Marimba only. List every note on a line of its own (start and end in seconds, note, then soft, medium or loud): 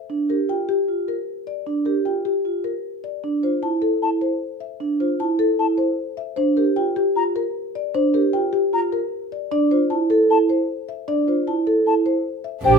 0.00 0.16 E5 soft
0.30 0.55 A#4 medium
0.49 0.75 G5 medium
0.69 0.94 G4 medium
1.08 1.34 A#4 medium
1.47 1.73 D5 soft
1.85 2.12 A#4 medium
2.05 2.32 G5 soft
2.25 2.51 G4 medium
2.64 2.90 A#4 medium
3.04 3.30 D5 medium
3.43 3.69 C5 medium
3.63 3.89 A5 medium
3.82 4.08 A4 medium
4.21 4.47 C5 medium
4.60 4.86 E5 soft
5.00 5.26 C5 medium
5.20 5.46 A5 medium
5.39 5.65 A4 medium
5.78 6.04 C5 medium
6.17 6.43 E5 medium
6.36 6.63 C5 medium
6.57 6.83 A#4 medium
6.76 7.02 G5 medium
6.96 7.22 G4 medium
7.36 7.61 A#4 medium
7.75 8.01 D5 medium
7.94 8.20 C5 medium
8.14 8.40 A#4 medium
8.33 8.59 G5 medium
8.53 8.79 G4 medium
8.92 9.18 A#4 medium
9.32 9.50 D5 medium
9.52 9.77 D5 medium
9.71 9.97 C5 medium
9.90 10.16 A5 medium
10.10 10.36 A4 medium
10.49 10.75 C5 medium
10.89 11.14 E5 medium
11.08 11.34 D5 medium
11.28 11.53 C5 medium
11.48 11.73 A5 medium
11.67 11.93 A4 medium
12.06 12.32 C5 medium
12.44 12.71 E5 soft
12.64 12.79 C5 medium